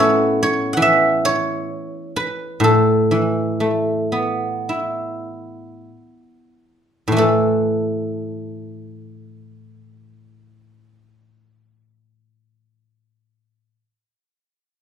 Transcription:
guzheng
Already playing: A2 A3 B3 C#4 E4 F#4 A4 B4
0.00 C#5
0.43 C#5
0.73 E3 F#5
0.82 E5
1.25 C#5
2.16 B4
2.60 A2
2.64 A4
3.11 E3
3.60 A3
4.12 B3
4.69 E4
7.08 A2
7.12 E3
7.17 A3 A4

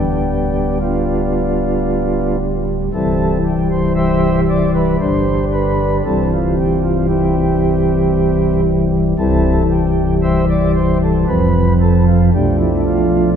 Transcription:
pipe organ
Already playing: D1 D2 G3 B3 D4 G4
0.81 B3 D4 F4
2.93 C1 C2 E3 G3 C4 E4 A4
3.46 G4
3.71 C5
3.96 G4 C5 E5
4.49 D5
4.74 B4
5.00 G1 G2 D3 G3 D4 C5
5.53 B4
6.05 C1 C2 E3 G3 C4 A4
6.33 F4
6.58 G4
6.84 F4
7.09 C4 E4 G4
9.18 C1 C2 E3 G3 C4 E4 A4
9.71 G4
10.23 G4 C5 E5
10.49 D5
10.75 C5
11.03 A4
11.28 F1 F2 F3 C4 B4
11.81 A4
12.07 F4
12.33 B1 B2 F3 A3 D4 G4
12.59 E4
12.86 F4

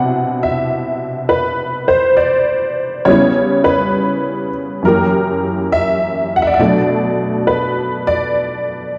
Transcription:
honky-tonk piano
Already playing: B2 C3 D4 E4 F#5
0.43 E5
1.29 B4
1.88 C5
2.17 D5
3.05 C#3 G3 B3 C#5
3.10 E4
3.64 B4
4.82 F#2 E3 A#3 A#4
4.87 G4
5.72 E5
6.36 F#5
6.42 E5
6.47 D5
6.54 E5
6.59 B2 F#3 A3 D4 D5
7.47 B4
8.07 D5

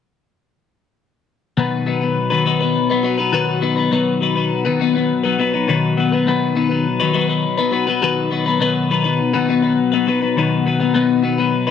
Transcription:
clean electric guitar
1.57 B2 D#3 F#3 B3 D#4 B4
1.86 F#3 B3 D#4 B4
2.01 F#3 B3 D#4 B4
2.30 B2 D#3 F#3 B3 D#4 B4
2.46 F#3 B3 D#4 B4
2.61 F#3 B3 D#4 B4
2.90 F#3 B3 D#4 B4
3.03 F#3 B3 D#4 B4
3.18 F#3 B3 D#4 B4
3.32 B2 D#3 F#3 B3 D#4 B4
3.61 F#3 B3 D#4 B4
3.76 F#3 B3 D#4 B4
3.91 B2 D#3 F#3 B3 D#4 B4
4.21 F#3 B3 D#4 B4
4.35 F#3 B3 D#4 B4
4.65 B2 D#3 F#3 B3 D#4 B4
4.80 F#3 B3 D#4 B4
4.95 F#3 B3 D#4 B4
5.23 F#3 B3 D#4 B4
5.39 F#3 B3 D#4 B4
5.54 F#3 B3 D#4 B4
5.67 B2 D#3 F#3 B3 D#4 B4
5.97 F#3 B3 D#4 B4
6.12 F#3 B3 D#4 B4
6.27 B2 D#3 F#3 B3 D#4 B4
6.55 F#3 B3 D#4 B4
6.69 F#3 B3 D#4 B4
7.00 B2 D#3 F#3 B3 D#4 B4
7.13 F#3 B3 D#4 B4
7.28 F#3 B3 D#4 B4
7.58 F#3 B3 D#4 B4
7.71 F#3 B3 D#4 B4
7.87 F#3 B3 D#4 B4
8.02 B2 D#3 F#3 B3 D#4 B4
8.31 F#3 B3 D#4 B4
8.46 F#3 B3 D#4 B4
8.60 B2 D#3 F#3 B3 D#4 B4
8.90 F#3 B3 D#4 B4
9.04 F#3 B3 D#4 B4
9.33 B2 D#3 F#3 B3 D#4 B4
9.48 F#3 B3 D#4 B4
9.62 F#3 B3 D#4 B4
9.92 F#3 B3 D#4 B4
10.07 F#3 B3 D#4 B4
10.21 F#3 B3 D#4 B4
10.37 B2 D#3 F#3 B3 D#4 B4
10.66 F#3 B3 D#4 B4
10.80 F#3 B3 D#4 B4
10.94 B2 D#3 F#3 B3 D#4 B4
11.23 F#3 B3 D#4 B4
11.38 F#3 B3 D#4 B4
11.67 D#4 B4

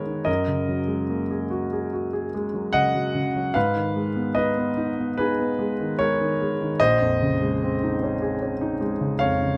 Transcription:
grand piano
Already playing: G#2 D#3 G#3 B3 D#4 G#4 A#4 B4 C#5
0.06 D#3
0.25 F#2 A#4 D#5
0.47 C#3
0.69 F#3
0.87 G#3
1.09 A#3
1.31 G#4
1.50 F#4
1.73 G#4
1.93 F#4
2.13 G#4
2.34 G#3
2.54 F#3
2.73 C#3 D#5 F#5
2.95 F#3
3.15 C#3
3.36 F#3
3.54 G#2 B4 F5
3.76 D#3
3.96 G#3
4.16 B3
4.35 D#4 B4 D#5
4.57 B3
4.77 D#4
4.99 B3
5.17 D#4 G#4 B4
5.39 B3
5.59 G#3
5.80 D#3
5.99 G#3 A#4 C#5
6.21 D#3
6.41 G#3
6.61 D#3
6.80 A#1 C5 D#5
7.01 F2
7.22 C#3
7.42 G#3
7.63 C4
7.83 D#4
8.03 C#4
8.22 G#4
8.42 C#4
8.61 D#4
8.81 G#3
9.01 C#3
9.19 F2 C#5 F5
9.41 C#3

